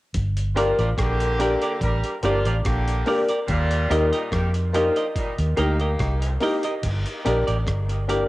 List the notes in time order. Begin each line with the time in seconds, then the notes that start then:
0.14 G1, kick, closed hi-hat
0.37 closed hi-hat
0.55 F3 A#3 D4 F4 G4 A#4 D5, closed hi-hat
0.79 A1 G4 A#4 D5, closed hi-hat
0.97 A#1 D3 A#3 G4, kick, cross-stick, closed hi-hat
1.20 closed hi-hat
1.39 A#3 D4 G4 A#4 D5, closed hi-hat
1.62 G4 A#4 D5, closed hi-hat
1.81 A1 G3 D4 A#4, kick, closed hi-hat
2.04 closed hi-hat
2.23 G1 F3 A#3 D4 F4 G4 A#4 D5, closed hi-hat
2.45 A1 G4 A#4 D5, closed hi-hat
2.64 A#1 D3 A#3 G4, kick, cross-stick, closed hi-hat
2.88 closed hi-hat
3.06 A#3 D4 G4 A#4 D5, open hi-hat
3.29 G4 A#4 D5, closed hi-hat
3.47 D#2 A#2 G3 F4, kick, closed hi-hat
3.71 closed hi-hat
3.90 D#2 A#3 D#4 G4 A#4 D#5, closed hi-hat
4.11 A#2 G3 D#4 G4 A#4 D#5, closed hi-hat
4.31 F2 D#3 A#3 G4, kick, cross-stick, closed hi-hat
4.54 closed hi-hat
4.73 F3 A#3 D4 D#4 F4 G4 A#4 D#5, closed hi-hat
4.96 G4 A#4 D#5, closed hi-hat
5.15 A#2 G3 D#4, kick, closed hi-hat
5.38 D#2, closed hi-hat
5.57 D2 A#3 D#4 G4 A#4 D#5, closed hi-hat
5.80 G4 A#4 D#5, closed hi-hat
5.99 C2, kick, cross-stick, closed hi-hat
6.22 closed hi-hat
6.40 A#3 D#4 G4 A#4 D#5, open hi-hat
6.63 G4 A#4 D#5, closed hi-hat
6.83 G1, kick, closed hi-hat, crash
7.06 closed hi-hat
7.25 A#1 A#3 D4 G4 A#4 D5, closed hi-hat
7.47 A1 G4 A#4 D5, closed hi-hat
7.67 G1, kick, cross-stick, closed hi-hat
7.89 closed hi-hat
8.08 A#3 D4 G4 A#4 D5, closed hi-hat